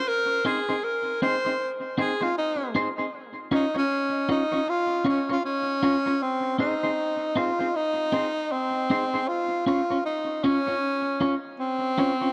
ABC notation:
X:1
M:4/4
L:1/16
Q:"Swing 16ths" 1/4=78
K:Ab
V:1 name="Clean electric guitar"
z2 [CEAc] [CEAc] z2 [CEAc] [CEAc] z2 [CEAc] [CEAc] z2 [CEAc] [CEAc] | z2 [DFBd] [DFBd] z2 [DFBd] [DFBd] z2 [DFBd] [DFBd] z2 [DFBd] [DFBd] | z2 [CEAc] [CEAc] z2 [CEAc] [CEAc] z2 [CEAc] z3 [CEAc] [CEAc] | z2 [DFBd] [DFBd] z2 [DFBd] [DFBd] z2 [DFBd] z3 [DFBd] [DFBd] |]
V:2 name="Tenor saxophone"
B2 A2 B2 c3 z A F E2 z2 | z2 E D3 E2 F2 D F D4 | C2 E4 F2 E4 C4 | F2 F2 E2 D4 z2 C4 |]